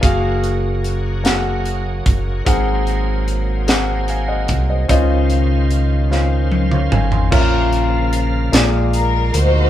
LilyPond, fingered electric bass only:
\new Staff \with { instrumentName = "Fingered electric bass" } { \clef bass \time 6/8 \key des \major \tempo 4. = 49 ges,,2~ ges,,8 ges,,8 | aes,,2~ aes,,8 c,8 | des,2~ des,8 aes,,8 | bes,,4. bes,,4 d,8 | }